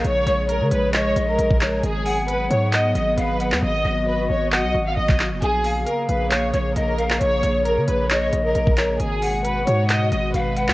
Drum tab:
HH |x-x-x-x-x-x-x-x-|x-o-x-x-x-x-x-x-|----------------|x-o-x-x-x-x-x-x-|
CP |--------x-----x-|--------x------x|--------x----xx-|--------x------x|
BD |-------------o--|----------------|-------------o--|----------------|

HH |x-x-x-x-x-x-x-x-|x-o-x-x-x-x-x-x-|
CP |--------x-----x-|--------x------x|
BD |-------------o--|----------------|